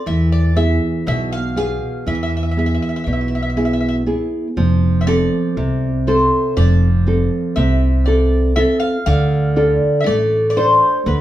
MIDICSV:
0, 0, Header, 1, 4, 480
1, 0, Start_track
1, 0, Tempo, 1000000
1, 30, Time_signature, 9, 3, 24, 8
1, 5380, End_track
2, 0, Start_track
2, 0, Title_t, "Bouzouki"
2, 0, Program_c, 0, 25
2, 33, Note_on_c, 0, 76, 88
2, 144, Note_off_c, 0, 76, 0
2, 155, Note_on_c, 0, 74, 77
2, 265, Note_off_c, 0, 74, 0
2, 272, Note_on_c, 0, 76, 87
2, 495, Note_off_c, 0, 76, 0
2, 518, Note_on_c, 0, 76, 99
2, 627, Note_off_c, 0, 76, 0
2, 636, Note_on_c, 0, 77, 93
2, 749, Note_off_c, 0, 77, 0
2, 755, Note_on_c, 0, 77, 92
2, 994, Note_off_c, 0, 77, 0
2, 996, Note_on_c, 0, 76, 79
2, 1025, Note_off_c, 0, 76, 0
2, 1031, Note_on_c, 0, 76, 58
2, 1064, Note_off_c, 0, 76, 0
2, 1069, Note_on_c, 0, 76, 67
2, 1096, Note_off_c, 0, 76, 0
2, 1101, Note_on_c, 0, 76, 48
2, 1130, Note_off_c, 0, 76, 0
2, 1136, Note_on_c, 0, 76, 62
2, 1160, Note_off_c, 0, 76, 0
2, 1166, Note_on_c, 0, 76, 48
2, 1201, Note_off_c, 0, 76, 0
2, 1206, Note_on_c, 0, 76, 55
2, 1236, Note_off_c, 0, 76, 0
2, 1242, Note_on_c, 0, 76, 48
2, 1272, Note_off_c, 0, 76, 0
2, 1277, Note_on_c, 0, 76, 58
2, 1312, Note_off_c, 0, 76, 0
2, 1317, Note_on_c, 0, 76, 53
2, 1350, Note_off_c, 0, 76, 0
2, 1355, Note_on_c, 0, 76, 56
2, 1381, Note_off_c, 0, 76, 0
2, 1387, Note_on_c, 0, 76, 49
2, 1416, Note_off_c, 0, 76, 0
2, 1422, Note_on_c, 0, 76, 63
2, 1453, Note_off_c, 0, 76, 0
2, 1459, Note_on_c, 0, 76, 47
2, 1493, Note_off_c, 0, 76, 0
2, 1501, Note_on_c, 0, 76, 50
2, 1533, Note_off_c, 0, 76, 0
2, 1541, Note_on_c, 0, 76, 44
2, 1569, Note_off_c, 0, 76, 0
2, 1575, Note_on_c, 0, 76, 51
2, 1602, Note_off_c, 0, 76, 0
2, 1608, Note_on_c, 0, 76, 53
2, 1638, Note_off_c, 0, 76, 0
2, 1644, Note_on_c, 0, 76, 53
2, 1673, Note_off_c, 0, 76, 0
2, 1679, Note_on_c, 0, 76, 50
2, 1708, Note_off_c, 0, 76, 0
2, 1713, Note_on_c, 0, 76, 64
2, 1747, Note_off_c, 0, 76, 0
2, 1752, Note_on_c, 0, 76, 57
2, 1785, Note_off_c, 0, 76, 0
2, 1792, Note_on_c, 0, 76, 61
2, 1821, Note_off_c, 0, 76, 0
2, 1827, Note_on_c, 0, 76, 52
2, 1858, Note_off_c, 0, 76, 0
2, 1865, Note_on_c, 0, 76, 63
2, 1895, Note_off_c, 0, 76, 0
2, 2404, Note_on_c, 0, 76, 60
2, 2432, Note_off_c, 0, 76, 0
2, 2434, Note_on_c, 0, 74, 96
2, 2894, Note_off_c, 0, 74, 0
2, 2917, Note_on_c, 0, 72, 67
2, 3138, Note_off_c, 0, 72, 0
2, 3152, Note_on_c, 0, 74, 91
2, 3613, Note_off_c, 0, 74, 0
2, 3628, Note_on_c, 0, 76, 79
2, 3865, Note_off_c, 0, 76, 0
2, 3867, Note_on_c, 0, 74, 72
2, 4106, Note_off_c, 0, 74, 0
2, 4108, Note_on_c, 0, 76, 102
2, 4221, Note_off_c, 0, 76, 0
2, 4223, Note_on_c, 0, 77, 84
2, 4343, Note_off_c, 0, 77, 0
2, 4349, Note_on_c, 0, 77, 102
2, 4778, Note_off_c, 0, 77, 0
2, 4803, Note_on_c, 0, 76, 68
2, 4829, Note_off_c, 0, 76, 0
2, 4830, Note_on_c, 0, 74, 93
2, 5023, Note_off_c, 0, 74, 0
2, 5040, Note_on_c, 0, 74, 71
2, 5072, Note_off_c, 0, 74, 0
2, 5073, Note_on_c, 0, 72, 75
2, 5313, Note_off_c, 0, 72, 0
2, 5315, Note_on_c, 0, 71, 65
2, 5380, Note_off_c, 0, 71, 0
2, 5380, End_track
3, 0, Start_track
3, 0, Title_t, "Nylon-string guitar"
3, 0, Program_c, 1, 24
3, 30, Note_on_c, 1, 52, 67
3, 269, Note_on_c, 1, 59, 42
3, 271, Note_on_c, 1, 64, 39
3, 272, Note_on_c, 1, 68, 51
3, 497, Note_off_c, 1, 52, 0
3, 512, Note_on_c, 1, 47, 65
3, 655, Note_off_c, 1, 59, 0
3, 656, Note_off_c, 1, 64, 0
3, 656, Note_off_c, 1, 68, 0
3, 750, Note_on_c, 1, 59, 51
3, 756, Note_on_c, 1, 68, 56
3, 978, Note_off_c, 1, 47, 0
3, 992, Note_on_c, 1, 52, 57
3, 1136, Note_off_c, 1, 59, 0
3, 1139, Note_off_c, 1, 68, 0
3, 1233, Note_on_c, 1, 59, 41
3, 1236, Note_on_c, 1, 64, 37
3, 1238, Note_on_c, 1, 68, 41
3, 1459, Note_off_c, 1, 52, 0
3, 1476, Note_on_c, 1, 47, 62
3, 1617, Note_off_c, 1, 59, 0
3, 1618, Note_off_c, 1, 64, 0
3, 1620, Note_off_c, 1, 68, 0
3, 1711, Note_on_c, 1, 59, 38
3, 1714, Note_on_c, 1, 64, 41
3, 1715, Note_on_c, 1, 68, 42
3, 1941, Note_off_c, 1, 47, 0
3, 1945, Note_off_c, 1, 59, 0
3, 1947, Note_off_c, 1, 64, 0
3, 1948, Note_off_c, 1, 68, 0
3, 1951, Note_on_c, 1, 59, 49
3, 1953, Note_on_c, 1, 64, 42
3, 1955, Note_on_c, 1, 68, 55
3, 2144, Note_off_c, 1, 59, 0
3, 2145, Note_off_c, 1, 64, 0
3, 2146, Note_off_c, 1, 68, 0
3, 2194, Note_on_c, 1, 53, 69
3, 2432, Note_on_c, 1, 60, 49
3, 2435, Note_on_c, 1, 65, 42
3, 2438, Note_on_c, 1, 69, 49
3, 2659, Note_off_c, 1, 53, 0
3, 2675, Note_on_c, 1, 48, 64
3, 2817, Note_off_c, 1, 60, 0
3, 2819, Note_off_c, 1, 65, 0
3, 2819, Note_off_c, 1, 69, 0
3, 2914, Note_on_c, 1, 60, 47
3, 2916, Note_on_c, 1, 65, 48
3, 2919, Note_on_c, 1, 69, 58
3, 3139, Note_off_c, 1, 48, 0
3, 3152, Note_on_c, 1, 53, 58
3, 3298, Note_off_c, 1, 60, 0
3, 3298, Note_off_c, 1, 65, 0
3, 3299, Note_off_c, 1, 69, 0
3, 3392, Note_on_c, 1, 60, 47
3, 3394, Note_on_c, 1, 65, 43
3, 3396, Note_on_c, 1, 69, 49
3, 3618, Note_off_c, 1, 53, 0
3, 3635, Note_on_c, 1, 48, 63
3, 3776, Note_off_c, 1, 60, 0
3, 3778, Note_off_c, 1, 65, 0
3, 3778, Note_off_c, 1, 69, 0
3, 3870, Note_on_c, 1, 60, 45
3, 3872, Note_on_c, 1, 65, 42
3, 3876, Note_on_c, 1, 69, 46
3, 4099, Note_off_c, 1, 48, 0
3, 4104, Note_off_c, 1, 60, 0
3, 4106, Note_off_c, 1, 65, 0
3, 4108, Note_off_c, 1, 69, 0
3, 4110, Note_on_c, 1, 60, 51
3, 4112, Note_on_c, 1, 65, 45
3, 4114, Note_on_c, 1, 69, 58
3, 4303, Note_off_c, 1, 60, 0
3, 4304, Note_off_c, 1, 65, 0
3, 4305, Note_off_c, 1, 69, 0
3, 4354, Note_on_c, 1, 50, 76
3, 4590, Note_on_c, 1, 62, 44
3, 4592, Note_on_c, 1, 65, 47
3, 4593, Note_on_c, 1, 69, 51
3, 4818, Note_off_c, 1, 50, 0
3, 4834, Note_on_c, 1, 57, 60
3, 4975, Note_off_c, 1, 62, 0
3, 4975, Note_off_c, 1, 65, 0
3, 4977, Note_off_c, 1, 69, 0
3, 5071, Note_on_c, 1, 62, 51
3, 5074, Note_on_c, 1, 65, 41
3, 5075, Note_on_c, 1, 69, 52
3, 5298, Note_off_c, 1, 57, 0
3, 5309, Note_on_c, 1, 50, 61
3, 5380, Note_off_c, 1, 50, 0
3, 5380, Note_off_c, 1, 62, 0
3, 5380, Note_off_c, 1, 65, 0
3, 5380, Note_off_c, 1, 69, 0
3, 5380, End_track
4, 0, Start_track
4, 0, Title_t, "Upright bass"
4, 0, Program_c, 2, 32
4, 33, Note_on_c, 2, 40, 97
4, 369, Note_off_c, 2, 40, 0
4, 513, Note_on_c, 2, 35, 96
4, 849, Note_off_c, 2, 35, 0
4, 991, Note_on_c, 2, 40, 87
4, 1328, Note_off_c, 2, 40, 0
4, 1472, Note_on_c, 2, 35, 82
4, 1976, Note_off_c, 2, 35, 0
4, 2193, Note_on_c, 2, 29, 81
4, 2529, Note_off_c, 2, 29, 0
4, 2673, Note_on_c, 2, 36, 82
4, 3009, Note_off_c, 2, 36, 0
4, 3153, Note_on_c, 2, 29, 84
4, 3489, Note_off_c, 2, 29, 0
4, 3632, Note_on_c, 2, 36, 84
4, 4136, Note_off_c, 2, 36, 0
4, 4351, Note_on_c, 2, 38, 94
4, 4687, Note_off_c, 2, 38, 0
4, 4832, Note_on_c, 2, 33, 78
4, 5168, Note_off_c, 2, 33, 0
4, 5310, Note_on_c, 2, 38, 91
4, 5380, Note_off_c, 2, 38, 0
4, 5380, End_track
0, 0, End_of_file